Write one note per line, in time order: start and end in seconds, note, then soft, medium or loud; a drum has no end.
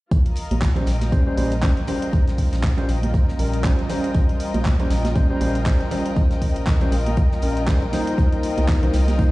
0.11 0.23 A#1 medium
0.11 9.31 G3 medium
0.11 8.14 C#4 medium
0.11 9.31 F4 medium
0.11 8.14 F4 medium
0.11 9.31 A#4 medium
0.11 4.11 C5 medium
0.11 kick loud
0.11 closed hi-hat medium
0.23 9.31 D#5 medium
0.23 closed hi-hat medium
0.27 9.31 A#4 medium
0.36 closed hi-hat medium
0.36 open hi-hat loud
0.51 0.83 A#1 medium
0.51 closed hi-hat medium
0.51 high conga medium
0.62 kick loud
0.62 snare loud
0.62 clap loud
0.62 closed hi-hat medium
0.71 9.31 G5 medium
0.76 0.88 G3 medium
0.76 0.88 C#4 medium
0.76 0.89 C5 medium
0.76 closed hi-hat soft
0.76 low conga loud
0.87 1.21 A#1 loud
0.87 snare medium
0.87 closed hi-hat medium
0.87 open hi-hat loud
1.01 snare medium
1.01 closed hi-hat medium
1.01 high conga medium
1.12 1.23 G3 medium
1.12 1.23 C#4 medium
1.12 1.23 C5 loud
1.12 kick loud
1.12 closed hi-hat medium
1.26 1.35 G3 medium
1.26 1.35 C#4 medium
1.26 1.35 C5 medium
1.37 1.72 A#1 loud
1.37 1.52 G3 medium
1.37 1.53 C#4 medium
1.37 1.53 C5 medium
1.37 closed hi-hat medium
1.37 open hi-hat loud
1.37 high conga medium
1.52 closed hi-hat soft
1.52 closed hi-hat medium
1.62 1.78 G3 medium
1.62 1.78 C#4 medium
1.62 1.78 C5 loud
1.62 kick loud
1.62 snare loud
1.62 clap loud
1.62 closed hi-hat medium
1.77 1.85 A#1 medium
1.77 closed hi-hat soft
1.87 2.74 G3 medium
1.87 2.74 C#4 medium
1.87 2.75 C5 medium
1.87 closed hi-hat medium
1.87 open hi-hat loud
1.87 low conga medium
2.02 closed hi-hat medium
2.13 2.24 A#1 loud
2.13 kick loud
2.13 closed hi-hat medium
2.28 snare soft
2.28 closed hi-hat medium
2.38 kick medium
2.38 open hi-hat medium
2.38 open hi-hat loud
2.53 2.85 A#1 medium
2.53 snare soft
2.53 closed hi-hat medium
2.63 kick loud
2.63 snare loud
2.63 clap loud
2.77 2.90 G3 medium
2.77 2.90 C#4 medium
2.77 2.90 C5 loud
2.77 closed hi-hat soft
2.77 low conga loud
2.89 3.23 A#1 loud
2.89 closed hi-hat medium
2.89 open hi-hat loud
3.03 closed hi-hat medium
3.03 high conga medium
3.14 kick loud
3.14 closed hi-hat medium
3.28 snare soft
3.39 3.73 A#1 loud
3.39 3.61 G3 medium
3.39 3.62 C#4 medium
3.39 3.62 A#4 medium
3.39 closed hi-hat medium
3.39 open hi-hat loud
3.54 closed hi-hat medium
3.64 3.79 G3 medium
3.64 3.80 C#4 medium
3.64 3.80 C5 medium
3.64 kick loud
3.64 snare loud
3.64 clap loud
3.64 closed hi-hat medium
3.79 3.87 A#1 medium
3.79 closed hi-hat soft
3.89 4.76 G3 medium
3.89 4.76 C#4 medium
3.89 4.77 C5 loud
3.89 snare medium
3.89 closed hi-hat medium
3.89 open hi-hat loud
3.89 low conga medium
4.04 closed hi-hat medium
4.14 4.26 A#1 loud
4.14 kick loud
4.14 closed hi-hat medium
4.29 closed hi-hat soft
4.40 closed hi-hat medium
4.40 open hi-hat loud
4.54 4.86 A#1 medium
4.54 closed hi-hat medium
4.54 high conga medium
4.65 kick loud
4.65 snare loud
4.65 clap loud
4.65 closed hi-hat medium
4.79 4.91 G3 medium
4.79 4.92 C#4 medium
4.79 4.92 C5 medium
4.79 closed hi-hat soft
4.79 low conga loud
4.90 5.25 A#1 loud
4.90 snare medium
4.90 closed hi-hat medium
4.90 open hi-hat loud
5.04 snare soft
5.04 closed hi-hat medium
5.04 high conga medium
5.15 5.26 G3 medium
5.15 5.27 C#4 medium
5.15 5.27 C5 loud
5.15 kick loud
5.15 closed hi-hat medium
5.29 5.38 G3 medium
5.29 5.38 C#4 medium
5.29 5.39 C5 medium
5.40 5.75 A#1 loud
5.40 5.56 G3 medium
5.40 5.56 C#4 medium
5.40 5.56 C5 medium
5.40 closed hi-hat medium
5.40 open hi-hat loud
5.40 high conga medium
5.55 closed hi-hat medium
5.55 closed hi-hat soft
5.66 5.81 G3 medium
5.66 5.81 C#4 medium
5.66 5.82 C5 loud
5.66 kick loud
5.66 snare loud
5.66 clap loud
5.66 closed hi-hat medium
5.80 5.89 A#1 medium
5.80 closed hi-hat soft
5.90 6.77 G3 medium
5.90 6.78 C#4 medium
5.90 6.78 C5 medium
5.90 closed hi-hat medium
5.90 open hi-hat loud
5.90 low conga medium
6.06 closed hi-hat medium
6.16 6.28 A#1 loud
6.16 kick loud
6.16 closed hi-hat medium
6.31 snare soft
6.31 closed hi-hat soft
6.42 kick medium
6.42 open hi-hat loud
6.56 6.88 A#1 medium
6.56 closed hi-hat medium
6.67 kick loud
6.67 snare loud
6.67 clap loud
6.67 closed hi-hat medium
6.81 6.93 G3 medium
6.81 6.93 C#4 medium
6.81 6.94 C5 medium
6.81 closed hi-hat soft
6.81 low conga medium
6.92 7.26 A#1 loud
6.92 closed hi-hat medium
6.92 open hi-hat loud
7.06 closed hi-hat medium
7.06 high conga medium
7.17 kick loud
7.17 closed hi-hat medium
7.32 snare soft
7.42 7.77 A#1 loud
7.42 7.65 G3 medium
7.42 7.65 C#4 medium
7.42 7.65 A#4 medium
7.42 closed hi-hat medium
7.42 open hi-hat loud
7.57 closed hi-hat medium
7.67 7.83 G3 medium
7.67 7.83 C#4 medium
7.67 7.83 C5 medium
7.67 kick loud
7.67 snare loud
7.67 clap loud
7.67 closed hi-hat medium
7.82 7.90 A#1 medium
7.82 closed hi-hat soft
7.92 8.79 A#3 medium
7.92 8.79 D#4 medium
7.92 8.80 C5 loud
7.92 snare medium
7.92 closed hi-hat medium
7.92 open hi-hat loud
7.92 low conga medium
8.07 closed hi-hat medium
8.18 8.29 C2 loud
8.18 9.31 C4 medium
8.18 9.31 D#4 medium
8.18 9.31 C5 medium
8.18 kick loud
8.18 closed hi-hat medium
8.32 closed hi-hat soft
8.43 closed hi-hat medium
8.43 open hi-hat loud
8.57 8.90 C2 medium
8.57 closed hi-hat medium
8.57 high conga medium
8.68 kick loud
8.68 snare loud
8.68 clap loud
8.68 closed hi-hat medium
8.82 8.95 A#3 medium
8.82 8.95 D#4 medium
8.82 8.95 C5 medium
8.82 closed hi-hat soft
8.82 low conga medium
8.93 9.28 C2 loud
8.93 snare medium
8.93 closed hi-hat medium
8.93 open hi-hat loud
9.08 snare medium
9.08 closed hi-hat medium
9.08 high conga medium
9.18 9.30 A#3 medium
9.18 9.30 D#4 medium
9.18 9.30 C5 loud
9.18 kick loud
9.18 closed hi-hat medium